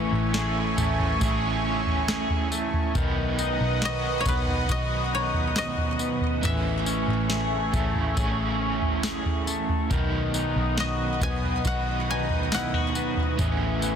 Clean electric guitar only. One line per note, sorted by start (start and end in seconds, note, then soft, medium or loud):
0.00 2.95 E3 medium
0.00 1.64 C#4 medium
0.35 1.20 G#4 medium
0.78 2.50 A3 medium
1.21 2.07 G#4 medium
1.65 3.04 C#4 medium
2.08 3.04 G#4 medium
2.52 3.04 A3 medium
2.95 6.42 D#3 medium
3.39 5.11 D#4 medium
3.82 4.68 F#4 medium
4.26 5.99 B3 medium
4.69 5.55 F#4 medium
5.13 6.52 D#4 medium
5.56 6.52 F#4 medium
6.00 6.52 B3 medium
6.43 9.90 E3 medium
6.86 8.59 C#4 medium
7.30 8.16 G#4 medium
7.73 9.46 A3 medium
8.17 9.02 G#4 medium
8.60 9.99 C#4 medium
9.04 9.99 G#4 medium
9.47 9.99 A3 medium
9.91 13.39 D#3 medium
10.34 12.07 D#4 medium
10.78 11.64 F#4 medium
11.22 12.94 B3 medium
11.65 12.52 F#4 medium
12.08 13.47 D#4 medium
12.52 12.74 E4 medium
12.74 13.48 F#4 medium
12.96 13.48 B3 medium
13.39 13.96 E3 medium
13.83 13.96 B3 medium